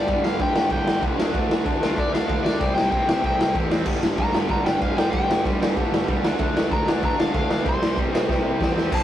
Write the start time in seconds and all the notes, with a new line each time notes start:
Already playing: D5
0.07 G1 G2 D3 G3, kick, ride
0.23 G1 F5, snare
0.39 G2 D3 G3 G5, kick, ride
0.53 G2 D3 G3, snare
0.69 G1 G2 D3 G3 G5, kick, ride
0.86 G1, snare
1.00 C2 G2 D3 G3, kick, ride
1.16 D2 D3 A3 D4, snare
1.31 D2 D3 A3 D4, kick, ride
1.49 D2, snare
1.65 D2 D3 A3 D4, kick, ride
1.80 D2 D3 A3 D4, snare
1.84 F4
1.95 D2 D3 A3 D4 D5, kick, ride
2.14 F5, snare
2.27 D2 D3 A3 D4, kick, ride
2.43 D2 D3 A3 D4 D5, snare
2.59 C2 C3 G3 C4, kick, ride
2.75 C2 G5, snare
2.91 C3 G3 C4 G5, kick, ride
3.06 C3 G3 C4, snare
3.22 C2 C3 G3 C4, kick, ride
3.27 G5
3.38 C2, snare
3.54 E2 C3 G3 C4, kick, ride
3.70 C3 G3 C4, snare
3.85 G1 G2 D3 G3, kick, crash
4.01 G1, snare
4.17 G1 G2 D3 G3 A#5, kick, ride
4.32 G1 G2 D3 G3, snare
4.47 G1 G2 D3 G3 A#5, kick, ride
4.66 G5, snare
4.80 G1 G2 D3 G3 F5, kick, ride
4.95 G1 G2 D3 G3 G5, snare
5.11 G1 G2 D3 G3 G5, kick, ride
5.28 G1, snare
5.43 G2 D3 G3, kick, ride
5.59 G2 D3 G3, snare
5.76 G1 G2 D3 G3, kick, ride
5.91 G1, snare
6.07 C2 G2 D3 G3, kick, ride
6.23 D2 D3 A3 D4, snare
6.39 D2 D3 A3 D4, kick, ride
6.56 D2, snare
6.71 D2 D3 A3 D4 A#5, kick, ride
6.86 D2 D3 A3 D4, snare
7.02 D2 D3 A3 D4 A#5, kick, ride
7.19 F5, snare
7.33 D2 D3 A3 D4 F5, kick, ride
7.48 D2 D3 A3 D4 F5, snare
7.63 C2 C3 G3 C4, kick, ride
7.69 C6
7.82 C2, snare
7.95 C3 G3 C4, kick, ride
8.11 C3 G3 C4, snare
8.26 C2 C3 G3 C4, kick
8.31 snare
8.42 C2
8.58 E2 C3 G3 C4, kick
8.62 snare
8.73 C3 G3 C4
8.78 snare
8.90 C2 C3 G3 C4, kick, crash
8.95 A5